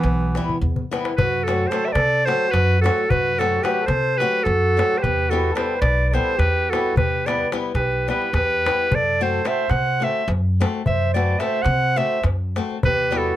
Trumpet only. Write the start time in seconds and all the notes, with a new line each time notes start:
Already playing: B3
1.18 F#4
1.45 F#4
1.71 A4
1.88 C5
1.93 A4
2.25 A4
2.49 F#4
2.81 F#4
3.06 F#4
3.35 F#4
3.61 G4
3.82 A4
4.18 G4
4.41 F#4
4.97 G4 A4
5.29 F#4
5.52 A4
5.77 B4
6.06 B4
6.13 A4
6.37 G4
6.70 F#4
6.98 G4
7.27 B4
7.75 G4
8.10 G4
8.34 G4
8.94 A4
9.24 A4
9.48 C5
9.73 C5
10.05 C5
10.88 C5
11.17 B4
11.44 C5
11.70 C5
12.01 C5
12.86 G4
13.15 F#4